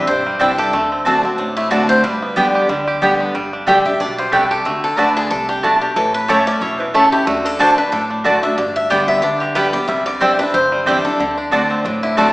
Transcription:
Already playing: five-string banjo C4 G4
0.07 upright bass B1, steel-string acoustic guitar G2 C5, five-string banjo D4
0.26 five-string banjo G3
0.39 upright bass C2, steel-string acoustic guitar E3 G3 D4 E4, mandolin C4 E4 D5 G5, five-string banjo D4
0.58 five-string banjo G4, steel-string acoustic guitar A4
0.73 upright bass D2, steel-string acoustic guitar D3, five-string banjo A3
0.92 five-string banjo C4
1.05 steel-string acoustic guitar D3 A3 C4 F#4, mandolin C4 F#4 D5 A5, five-string banjo D4
1.23 five-string banjo C4, steel-string acoustic guitar C4 F#4
1.38 upright bass A1, steel-string acoustic guitar A2, five-string banjo D4
1.57 five-string banjo A3, steel-string acoustic guitar E4
1.70 steel-string acoustic guitar D3 A3 C4 F#4 A4, mandolin C4 F#4 D5 A5, five-string banjo D4
1.89 five-string banjo D4, steel-string acoustic guitar C5
2.04 upright bass G1, steel-string acoustic guitar G2 B4, five-string banjo G3
2.22 five-string banjo B3
2.36 steel-string acoustic guitar D3 G3 B3 G4, mandolin B3 G4 D5 G5, five-string banjo D4
2.55 five-string banjo G4
2.69 upright bass D2, steel-string acoustic guitar D3, five-string banjo G3
2.87 five-string banjo G4
3.01 steel-string acoustic guitar D3 G3 B3 G4, mandolin B3 G4 D5 G5, five-string banjo B3
3.20 five-string banjo D4
3.35 upright bass G1, steel-string acoustic guitar G2, five-string banjo G3
3.53 five-string banjo D4
3.67 upright bass A1, steel-string acoustic guitar D3 G3 D4 G4, mandolin A3 G4 D5 G5, five-string banjo D4
3.85 steel-string acoustic guitar D4 G4 E5, five-string banjo G4
3.99 upright bass B1, steel-string acoustic guitar B2 D5, five-string banjo D4
4.18 five-string banjo G3, steel-string acoustic guitar C5
4.32 upright bass C2, steel-string acoustic guitar C3 B4, mandolin A3 G4 D5 G5, five-string banjo D4
4.51 five-string banjo G4, steel-string acoustic guitar A4
4.65 upright bass D2, steel-string acoustic guitar D3 F#4, five-string banjo A3
4.84 five-string banjo D4, steel-string acoustic guitar A4
4.97 upright bass D2, steel-string acoustic guitar D3 A3 D4 F#4 B4, mandolin A3 F#4 D5 A5, five-string banjo D4
5.16 five-string banjo D4, steel-string acoustic guitar G#4
5.30 upright bass C2, steel-string acoustic guitar C3 A4, five-string banjo D4
5.49 five-string banjo D4, steel-string acoustic guitar G4
5.63 upright bass B1, steel-string acoustic guitar B2 E4, mandolin A3 F#4 D5 A5, five-string banjo D4
5.81 five-string banjo D4, steel-string acoustic guitar G4
5.96 upright bass A1, steel-string acoustic guitar A2 A4, five-string banjo E3
6.14 steel-string acoustic guitar B4
6.28 steel-string acoustic guitar E3 A3 C#4 E4 C#5, mandolin A3 E4 C#5 A5, five-string banjo G4
6.47 five-string banjo C#4, steel-string acoustic guitar D5
6.61 upright bass E1, steel-string acoustic guitar B2 C#5, five-string banjo E4
6.80 five-string banjo E3, steel-string acoustic guitar B4
6.94 steel-string acoustic guitar C#3 A4, mandolin A3 E4 C#5 A5, five-string banjo A3
7.12 five-string banjo E4, steel-string acoustic guitar G4
7.27 upright bass D2, steel-string acoustic guitar D3 F#4, five-string banjo A3
7.45 five-string banjo D4, steel-string acoustic guitar A4
7.59 steel-string acoustic guitar D3 A3 D4 F#4 C5, mandolin A3 F#4 D5 A5, five-string banjo D4
7.77 five-string banjo D4, steel-string acoustic guitar D4 F#4 B4
7.92 upright bass A1, steel-string acoustic guitar A2 A4, five-string banjo D4
8.10 five-string banjo D4
8.24 steel-string acoustic guitar D3 A3 D4 F#4, mandolin A3 F#4 D5 A5, five-string banjo D4
8.43 five-string banjo D4, steel-string acoustic guitar D4 F#4 E5
8.57 upright bass G1, steel-string acoustic guitar G2 D5, five-string banjo D3
8.76 steel-string acoustic guitar E5
8.90 steel-string acoustic guitar D3 G3 B3 G4 G5, mandolin B3 G4 D5 G5, five-string banjo G4
9.08 five-string banjo B3, steel-string acoustic guitar E5
9.22 upright bass D2, steel-string acoustic guitar D3 D5, five-string banjo D4
9.40 five-string banjo D3, steel-string acoustic guitar G4
9.55 steel-string acoustic guitar D3 G3 B3 G4 B4, five-string banjo G3, mandolin B3 G4 D5 G5
9.73 steel-string acoustic guitar B3 G4 D5, five-string banjo D4
9.88 upright bass C2, steel-string acoustic guitar C3 E5, five-string banjo G3
10.06 five-string banjo D3, steel-string acoustic guitar D5
10.20 steel-string acoustic guitar E3 G3 D4 E4 C5, mandolin C4 E4 D5 G5, five-string banjo C4
10.39 five-string banjo D4, steel-string acoustic guitar D4 E4 B4
10.54 upright bass G1, steel-string acoustic guitar G2 C5, five-string banjo C4
10.72 five-string banjo G3
10.86 steel-string acoustic guitar E3 G3 D4 E4, mandolin C4 E4 D5 G5, five-string banjo G4
11.05 five-string banjo D4, steel-string acoustic guitar D4 E4 A4
11.19 upright bass D2, five-string banjo D3, steel-string acoustic guitar D3
11.37 five-string banjo D4
11.51 steel-string acoustic guitar D3 A3 C4 F#4, mandolin C4 F#4 D5 A5, five-string banjo D4
11.70 five-string banjo C4
11.84 upright bass A1, steel-string acoustic guitar A2, five-string banjo D4
12.03 five-string banjo D3, steel-string acoustic guitar E4
12.17 steel-string acoustic guitar D3 A3 C4 F#4 A4, five-string banjo A3, mandolin C4 F#4 D5 A5

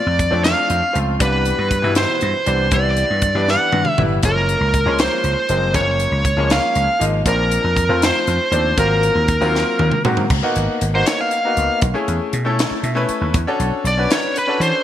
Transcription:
Already playing: grand piano F3 A3 C4 F4, lead electric guitar D5
0.07 slap bass F2
0.19 kick, closed hi-hat
0.31 slap bass F2, grand piano F3 A3 C4 D4
0.44 lead electric guitar F5, snare, closed hi-hat
0.70 slap bass F2, closed hi-hat
0.93 slap bass C#2, grand piano F3 A3 C4 F4, closed hi-hat
1.19 slap bass C2, grand piano E3 G3 B3 D4, lead electric guitar B4, kick, closed hi-hat
1.45 closed hi-hat
1.59 slap bass G2
1.71 kick, closed hi-hat
1.82 slap bass G2, grand piano B2 E3 G3 E4
1.95 lead electric guitar C5, snare, closed hi-hat
2.21 slap bass G2, closed hi-hat
2.46 slap bass C2, grand piano E3 G3 B3 D4, closed hi-hat
2.71 slap bass C2, grand piano E3 G3 B3 E4, lead electric guitar D5, kick, closed hi-hat
2.97 closed hi-hat
3.11 slap bass G2
3.22 kick, closed hi-hat
3.35 slap bass G2, grand piano E3 G3 B3 D4
3.48 lead electric guitar F#5, snare
3.72 slap bass G2, high tom
3.85 mid tom
3.90 lead electric guitar E5
3.98 slap bass G1, grand piano E3 G3 B3 E4, mid tom
4.23 slap bass F#1, grand piano F3 G#3 A#3 C#4, lead electric guitar A#4, kick, closed hi-hat
4.49 closed hi-hat
4.61 slap bass C#2
4.74 kick, closed hi-hat
4.86 slap bass C#2, grand piano F3 G#3 A#3 C#4
4.99 lead electric guitar C5, snare, closed hi-hat
5.24 slap bass C#2, closed hi-hat
5.49 slap bass F#1, grand piano F3 G#3 A#3 C4, closed hi-hat
5.73 slap bass F#1, grand piano F3 G#3 A#3 C#4, lead electric guitar C#5, kick, closed hi-hat
6.00 closed hi-hat
6.12 slap bass C#2
6.25 kick, closed hi-hat
6.37 slap bass C#2, grand piano F3 G#3 A#3 C#4
6.50 lead electric guitar F5, snare, closed hi-hat
6.75 slap bass C#2, closed hi-hat
6.99 slap bass G#1, grand piano F3 G#3 A#3 D#4, closed hi-hat
7.26 slap bass A#1, grand piano F3 A#3 C4 D4, lead electric guitar A#4, kick, closed hi-hat
7.51 closed hi-hat
7.64 slap bass F2
7.76 kick, closed hi-hat
7.89 slap bass F2, grand piano F3 A3 C4 F4
8.02 lead electric guitar C5, snare, closed hi-hat
8.27 slap bass F2, closed hi-hat
8.51 slap bass D#2, grand piano F3 A3 C4 D4, closed hi-hat
8.77 slap bass G#1, grand piano F#3 A#3 C4 F4, lead electric guitar A#4, kick, closed hi-hat
9.03 closed hi-hat
9.15 slap bass D#2
9.28 kick, closed hi-hat
9.41 slap bass D#2, grand piano F#3 A#3 C4 F4
9.55 snare
9.79 slap bass D#2, high tom
9.91 mid tom
10.05 slap bass G#2, grand piano F#3 A#3 C4 F#4, mid tom
10.17 floor tom
10.30 slap bass C#2, kick, crash
10.43 grand piano A#3 B3 D#4 F#4
10.56 slap bass G#1, closed hi-hat
10.68 muted slap bass stroke
10.81 slap bass G#1, closed hi-hat
10.94 grand piano A#3 B3 D#4 F#4, lead electric guitar C5
11.06 lead electric guitar C#5, snare, closed hi-hat
11.21 lead electric guitar F5
11.31 closed hi-hat
11.45 grand piano A#3 B3 D#4 F#4
11.57 slap bass C#2, closed hi-hat
11.81 slap bass B1, kick, closed hi-hat
11.94 grand piano A3 C#4 E4 G#4
12.08 slap bass E2, closed hi-hat
12.33 slap bass B2, closed hi-hat
12.45 grand piano A3 C#4 E4 A4
12.59 snare, closed hi-hat
12.71 muted slap bass stroke
12.83 slap bass B2, grand piano E5, closed hi-hat
12.95 grand piano A3 C#4 E4 B4
13.09 muted slap bass stroke, closed hi-hat
13.21 slap bass D#2
13.34 slap bass E2, kick, closed hi-hat
13.47 grand piano C#4 D4 F#4 A4
13.60 slap bass B1, closed hi-hat
13.72 muted slap bass stroke
13.84 slap bass B1, lead electric guitar D5, closed hi-hat
13.97 grand piano C#4 D4 F#4 B4
14.10 lead electric guitar C#5, snare, closed hi-hat
14.36 lead electric guitar B4, closed hi-hat
14.47 grand piano C#4 D4 F#4 A4
14.60 slap bass E3, lead electric guitar C5, closed hi-hat

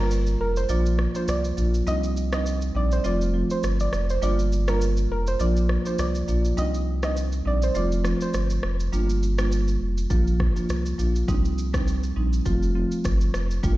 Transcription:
Already playing: sub bass G1, marimba G3 A#3 D4 F4
0.11 shaker
0.26 shaker
0.40 sub bass F1, synth pluck A#4
0.56 synth pluck C5, shaker
0.69 sub bass A#1, marimba F3 A#3 D4 F4, synth pluck D5, shaker
0.86 shaker
0.99 cross-stick
1.15 marimba F3 A#3 D4 F4, synth pluck C5, shaker
1.28 sub bass C2, synth pluck D5, cross-stick, shaker
1.44 shaker
1.57 sub bass A#1, marimba F3 A#3 D4 F4, shaker
1.74 shaker
1.87 sub bass C2, marimba G3 C4 D4 D#4, synth pluck D#5, shaker
2.03 shaker
2.17 shaker
2.32 marimba G3 C4 D4 D#4, synth pluck D#5, cross-stick, shaker
2.46 shaker
2.62 shaker
2.75 sub bass A#1, marimba G3 C4 D4 D#4, synth pluck D5
2.91 synth pluck C5, shaker
3.04 sub bass F1, marimba F3 A3 C4 F4, synth pluck D5, shaker
3.21 shaker
3.33 marimba F3 A3 C4 F4
3.50 synth pluck C5, shaker
3.63 sub bass G1, cross-stick, shaker
3.80 synth pluck D5, shaker
3.93 sub bass F1, cross-stick, shaker
4.09 synth pluck C5, shaker
4.22 sub bass G1, marimba G3 A#3 D4 F4, synth pluck D5, shaker
4.39 shaker
4.52 shaker
4.67 marimba G3 A#3 D4 F4, synth pluck A#4, cross-stick, shaker
4.81 shaker
4.97 shaker
5.11 sub bass F1, synth pluck A#4
5.27 synth pluck C5, shaker
5.40 sub bass A#1, marimba F3 A#3 D4 F4, synth pluck D5, shaker
5.57 shaker
5.69 cross-stick
5.85 marimba F3 A#3 D4 F4, synth pluck C5, shaker
5.99 sub bass C2, synth pluck D5, cross-stick, shaker
6.15 shaker
6.28 sub bass A#1, marimba F3 A#3 D4 F4, shaker
6.45 shaker
6.57 sub bass C2, marimba G3 C4 D4 D#4, synth pluck D#5, shaker
6.74 shaker
7.03 marimba G3 C4 D4 D#4, synth pluck D#5, cross-stick, shaker
7.17 shaker
7.32 shaker
7.45 sub bass A#1, marimba G3 C4 D4 D#4, synth pluck D5
7.62 synth pluck C5, shaker
7.75 sub bass F1, marimba F3 A3 C4 F4, synth pluck D5, shaker
7.92 shaker
8.04 marimba F3 A3 C4 F4, cross-stick, shaker
8.21 synth pluck C5, shaker
8.34 sub bass G1, cross-stick, shaker
8.50 shaker
8.63 sub bass F1, cross-stick
8.80 shaker
8.92 sub bass G1, marimba G3 A#3 D4 F4, shaker
9.10 shaker
9.23 shaker
9.38 marimba G3 A#3 D4 F4, cross-stick, shaker
9.52 shaker
9.68 shaker
9.81 sub bass F1
9.98 shaker
10.10 sub bass A#1, marimba F3 A#3 D4 F4, kick, shaker
10.27 shaker
10.40 kick, cross-stick
10.56 marimba F3 A#3 D4 F4, shaker
10.69 sub bass C2, cross-stick, shaker
10.86 shaker
10.98 sub bass A#1, marimba F3 A#3 D4 F4, shaker
11.16 shaker
11.28 sub bass C2, marimba G3 C4 D4 D#4, kick, shaker
11.45 shaker
11.58 shaker
11.74 marimba G3 C4 D4 D#4, kick, cross-stick, shaker
11.87 shaker
12.03 shaker
12.16 sub bass A#1, marimba G3 C4 D4 D#4
12.33 shaker
12.46 sub bass F1, marimba F3 A3 C4 F4, kick, shaker
12.63 shaker
12.75 marimba F3 A3 C4 F4
12.91 shaker
13.05 sub bass G1, kick, cross-stick, shaker
13.21 shaker
13.34 sub bass F1, cross-stick, shaker
13.51 shaker
13.63 sub bass G1, marimba G3 A#3 D4 F4, kick, shaker

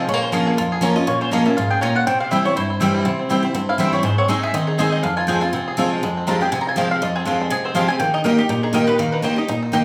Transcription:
0.08 steel-string acoustic guitar A#2, five-string banjo G#3, mandolin C#5
0.14 five-string banjo A#3
0.22 five-string banjo C#4, mandolin C5
0.32 steel-string acoustic guitar F3 A#3 C#4 F4, mandolin C#4 F4 A#4 C#5 A#5, five-string banjo G#4
0.46 five-string banjo A#3, mandolin G#4
0.57 steel-string acoustic guitar F2, five-string banjo F4, mandolin A#4
0.72 five-string banjo G#4
0.81 steel-string acoustic guitar F3 A#3 C#4 F4, mandolin C#4 F4 C#5 A#5, five-string banjo C#4
0.96 steel-string acoustic guitar C#4 F4, five-string banjo F4, mandolin D#5
1.07 steel-string acoustic guitar A#2, five-string banjo A#3, mandolin C#5
1.21 five-string banjo C#4, mandolin C5
1.31 steel-string acoustic guitar F3 A#3 C#4 F4, mandolin C#4 F4 C#5 D#5 A#5, five-string banjo G#4
1.46 five-string banjo A#3, steel-string acoustic guitar C#4 F4, mandolin E5
1.57 steel-string acoustic guitar G#2, five-string banjo F4, mandolin F5
1.70 five-string banjo G#4, mandolin G5
1.81 steel-string acoustic guitar A#2, five-string banjo C#4, mandolin C#4 F4 C#5 G#5 A#5
1.95 five-string banjo F4, mandolin F#5
2.07 steel-string acoustic guitar C3, five-string banjo C4, mandolin G5
2.20 five-string banjo C4, mandolin F5
2.31 steel-string acoustic guitar E3 G3 C4 E4, mandolin C4 E4 C5 E5 G5, five-string banjo E4
2.45 five-string banjo C4, steel-string acoustic guitar C4 E4, mandolin C#5
2.56 steel-string acoustic guitar G2, five-string banjo E4, mandolin C5
2.70 five-string banjo E4
2.80 steel-string acoustic guitar E3 G3 C4 E4, mandolin C4 E4 C5 G5, five-string banjo C4
2.94 five-string banjo E4
3.05 steel-string acoustic guitar C3, five-string banjo C4
3.19 five-string banjo C4
3.29 steel-string acoustic guitar E3 G3 C4 E4, mandolin C4 E4 C5 G5, five-string banjo E4
3.43 five-string banjo C4, steel-string acoustic guitar C4 E4
3.55 steel-string acoustic guitar G2, five-string banjo C4
3.69 five-string banjo E4, mandolin F5
3.78 steel-string acoustic guitar E3 G3 C4 E4, mandolin C4 E4 C5 E5 G5, five-string banjo C4
3.93 five-string banjo C4, steel-string acoustic guitar C4 E4, mandolin C#5
4.03 steel-string acoustic guitar G#2, five-string banjo G#3, mandolin C5
4.18 five-string banjo C4, mandolin C#5
4.28 steel-string acoustic guitar G#3 C4 D#4 G#4, mandolin C4 G#4 D#5 G#5, five-string banjo D#4
4.43 five-string banjo G#4, mandolin E5
4.54 steel-string acoustic guitar D#3, five-string banjo C4, mandolin D#5
4.67 five-string banjo D#4, mandolin G#4
4.78 steel-string acoustic guitar G#3 C4 D#4 G#4, mandolin C4 G#4 C5 D#5 G#5, five-string banjo G#4
4.92 five-string banjo G#3, mandolin D#5
5.03 steel-string acoustic guitar F2, five-string banjo G#3, mandolin F5
5.17 five-string banjo F4, mandolin G#5
5.27 steel-string acoustic guitar F3 G#3 C4 F4, mandolin C4 F4 C5 G5 G#5, five-string banjo G#4
5.41 steel-string acoustic guitar C4 F4, five-string banjo F4, mandolin G#5
5.53 steel-string acoustic guitar C3, five-string banjo C4
5.68 five-string banjo G#4
5.77 steel-string acoustic guitar F3 G#3 C4 F4, mandolin C4 F4 C5 G#5, five-string banjo F4
5.93 five-string banjo G#3
6.03 steel-string acoustic guitar F2, five-string banjo G#3
6.17 five-string banjo C4
6.27 steel-string acoustic guitar F3 G#3 C4 G4, mandolin G#3 F4 C5 F5 A#5, five-string banjo F4
6.41 steel-string acoustic guitar C4 G4, five-string banjo G#4, mandolin G5
6.52 steel-string acoustic guitar C3, five-string banjo C4, mandolin G#5
6.61 mandolin A#5
6.67 five-string banjo F4, mandolin G#5
6.76 steel-string acoustic guitar F3 G#3 C4 G4, mandolin G#3 F4 C5 F5 G5
6.91 five-string banjo C4, mandolin F5
7.02 steel-string acoustic guitar F2, five-string banjo F4, mandolin D#5
7.16 five-string banjo C4, mandolin G#4
7.25 steel-string acoustic guitar F3 G#3 C4 G4, five-string banjo F3, mandolin G#3 F4 C5 F5
7.41 five-string banjo G#3
7.50 steel-string acoustic guitar C3, five-string banjo G#4, mandolin G#5
7.65 five-string banjo C4, mandolin C5
7.75 steel-string acoustic guitar F3 G#3 C4 G4, mandolin G#3 F4 C5 F5, five-string banjo G#4
7.88 five-string banjo C4, steel-string acoustic guitar C4 G4, mandolin G#5
7.99 steel-string acoustic guitar D#3, five-string banjo A#3, mandolin G5
8.14 five-string banjo D#4, mandolin D#5
8.24 steel-string acoustic guitar D#3 A#3 D#4 G4, mandolin A#3 G4 A#4 D#5 G5, five-string banjo D#4
8.38 five-string banjo D#4, steel-string acoustic guitar D#4 G4, mandolin G4
8.49 steel-string acoustic guitar A#2, five-string banjo D#4, mandolin G4
8.63 five-string banjo D#4, mandolin G#4
8.73 steel-string acoustic guitar D#3 A#3 D#4 G4, mandolin A#3 G4 A#4 D#5 G5, five-string banjo D#4
8.87 five-string banjo D#4, steel-string acoustic guitar D#4 G4, mandolin B4
8.98 steel-string acoustic guitar D#3, five-string banjo A#3, mandolin A#4
9.12 five-string banjo D#4, mandolin B4
9.22 steel-string acoustic guitar D#3 A#3 D#4 G4, mandolin A#3 G4 C5 D#5 G5, five-string banjo D#4
9.36 five-string banjo D#4, steel-string acoustic guitar D#4 G4, mandolin D#5
9.48 steel-string acoustic guitar A#2, five-string banjo D#4
9.62 five-string banjo D#4
9.72 steel-string acoustic guitar D#3 A#3 D#4 G4, mandolin A#3 G4 D#5 G5, five-string banjo A#3

